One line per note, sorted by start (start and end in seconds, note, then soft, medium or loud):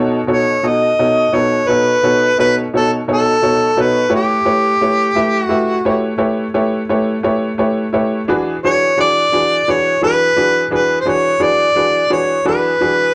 0.00 0.19 B2 medium
0.00 0.19 D#4 medium
0.00 0.19 F#4 medium
0.00 0.19 A4 medium
0.00 0.20 C#5 medium
0.27 0.54 B2 soft
0.27 0.54 D#4 soft
0.27 0.54 F#4 soft
0.27 0.55 A4 soft
0.27 0.54 C#5 medium
0.33 0.68 C#5 medium
0.63 0.89 B2 soft
0.63 0.89 D#4 soft
0.63 0.89 F#4 soft
0.63 0.89 A4 soft
0.63 0.90 D#5 medium
0.67 1.36 D#5 loud
0.99 1.24 B2 soft
0.99 1.24 D#4 soft
0.99 1.24 F#4 soft
0.99 1.24 A4 soft
0.99 1.25 C#5 soft
1.33 1.59 B2 soft
1.33 1.59 D#4 soft
1.33 1.59 F#4 soft
1.33 1.59 A4 soft
1.33 1.60 B4 medium
1.33 1.69 C#5 medium
1.68 1.94 B2 soft
1.68 1.94 D#4 soft
1.68 1.94 F#4 soft
1.68 1.94 A4 soft
1.68 2.37 B4 medium
1.68 1.95 C#5 medium
2.03 2.29 B2 soft
2.03 2.29 D#4 soft
2.03 2.29 F#4 soft
2.03 2.29 A4 soft
2.03 2.29 C#5 medium
2.38 2.64 B2 soft
2.38 2.64 D#4 soft
2.38 2.64 F#4 soft
2.38 2.64 A4 soft
2.38 2.55 B4 medium
2.38 2.64 C#5 medium
2.73 2.99 B2 soft
2.73 2.99 D#4 soft
2.73 2.99 F#4 soft
2.73 2.99 A4 soft
2.73 2.91 A4 medium
2.73 3.00 C#5 medium
3.07 3.33 B2 soft
3.07 3.33 D#4 soft
3.07 3.33 F#4 soft
3.07 3.34 A4 soft
3.07 3.34 C#5 medium
3.12 3.83 A4 medium
3.42 3.68 B2 soft
3.42 3.68 D#4 soft
3.42 3.68 F#4 soft
3.42 3.68 A4 soft
3.42 3.68 C#5 soft
3.77 4.03 B2 medium
3.77 4.03 D#4 soft
3.77 4.03 F#4 soft
3.77 4.03 A4 soft
3.77 4.03 C#5 medium
3.81 4.13 B4 medium
4.09 4.36 A3 medium
4.09 4.36 E4 medium
4.09 4.36 G4 medium
4.09 4.37 B4 medium
4.09 4.37 C#5 medium
4.15 5.43 G4 medium
4.45 4.71 A3 soft
4.45 4.72 E4 soft
4.45 4.72 G4 soft
4.45 4.72 B4 soft
4.45 4.72 C#5 medium
4.81 5.07 A3 soft
4.81 5.07 E4 soft
4.81 5.07 G4 soft
4.81 5.07 B4 soft
4.81 5.08 C#5 medium
5.16 5.42 A3 medium
5.16 5.42 E4 medium
5.16 5.42 G4 soft
5.16 5.42 B4 soft
5.16 5.42 E5 medium
5.43 6.18 F#4 medium
5.49 5.76 A3 medium
5.49 5.76 E4 medium
5.49 5.76 G4 medium
5.49 5.76 B4 medium
5.49 5.76 E5 medium
5.85 6.11 A3 medium
5.85 6.11 E4 medium
5.85 6.11 G4 medium
5.85 6.12 B4 medium
5.85 6.12 C#5 medium
6.18 6.45 A3 medium
6.18 6.45 E4 medium
6.18 6.45 G4 medium
6.18 6.45 B4 medium
6.18 6.45 C#5 medium
6.54 6.80 A3 medium
6.54 6.81 E4 medium
6.54 6.80 G4 medium
6.54 6.81 B4 medium
6.54 6.81 C#5 medium
6.89 7.15 A3 medium
6.89 7.15 E4 medium
6.89 7.16 G4 medium
6.89 7.16 B4 medium
6.89 7.16 C#5 medium
7.23 7.50 A3 medium
7.23 7.50 E4 medium
7.23 7.50 G4 medium
7.23 7.50 B4 medium
7.23 7.50 C#5 medium
7.58 7.85 A3 medium
7.58 7.85 E4 soft
7.58 7.85 G4 medium
7.58 7.85 B4 medium
7.58 7.85 C#5 medium
7.93 8.20 A3 medium
7.93 8.19 E4 medium
7.93 8.20 G4 medium
7.93 8.20 B4 medium
7.93 8.20 C#5 medium
8.28 8.54 E3 medium
8.28 8.55 D4 medium
8.28 8.55 F#4 medium
8.28 8.55 G#4 medium
8.28 8.55 B4 medium
8.64 8.90 E3 medium
8.64 8.90 D4 soft
8.64 8.90 F#4 soft
8.64 8.90 G#4 soft
8.64 8.90 B4 medium
8.64 8.97 C#5 medium
8.97 9.24 E3 soft
8.97 9.24 D4 soft
8.97 9.24 F#4 soft
8.97 9.24 G#4 soft
8.97 9.24 B4 medium
8.97 9.72 D5 loud
9.32 9.59 E3 soft
9.32 9.59 D4 soft
9.32 9.59 F#4 soft
9.32 9.59 G#4 soft
9.32 9.59 B4 medium
9.68 9.94 E3 medium
9.68 9.94 D4 soft
9.68 9.94 F#4 soft
9.68 9.94 G#4 soft
9.68 9.94 B4 medium
9.68 10.03 C#5 medium
10.01 10.28 E3 medium
10.01 10.29 D4 soft
10.01 10.28 F#4 soft
10.01 10.29 G#4 soft
10.01 10.29 B4 medium
10.01 10.69 B4 medium
10.36 10.63 E3 medium
10.36 10.63 D4 soft
10.36 10.63 F#4 soft
10.36 10.63 G#4 soft
10.36 10.63 B4 medium
10.70 10.97 E3 medium
10.70 10.98 D4 soft
10.70 10.98 F#4 soft
10.70 10.98 G#4 soft
10.70 10.98 B4 medium
10.75 10.99 B4 medium
11.01 11.11 C5 medium
11.05 11.32 E3 medium
11.05 11.32 D4 soft
11.05 11.33 F#4 soft
11.05 11.33 G#4 soft
11.05 11.33 B4 medium
11.05 11.44 C#5 medium
11.40 11.67 E3 medium
11.40 11.67 D4 soft
11.40 11.67 F#4 soft
11.40 11.67 G#4 soft
11.40 11.67 B4 medium
11.40 12.12 D5 medium
11.75 12.02 E3 soft
11.75 12.02 D4 soft
11.75 12.03 F#4 soft
11.75 12.02 G#4 soft
11.75 12.03 B4 medium
12.10 12.37 E3 soft
12.10 12.37 D4 soft
12.10 12.37 F#4 soft
12.10 12.37 G#4 soft
12.10 12.37 B4 medium
12.10 12.44 C#5 medium
12.45 12.71 E3 medium
12.45 12.72 D4 medium
12.45 12.72 F#4 soft
12.45 12.72 G#4 medium
12.45 12.72 B4 medium
12.45 13.14 B4 medium
12.80 13.07 E3 medium
12.80 13.07 D4 soft
12.80 13.07 F#4 soft
12.80 13.07 G#4 soft
12.80 13.08 B4 medium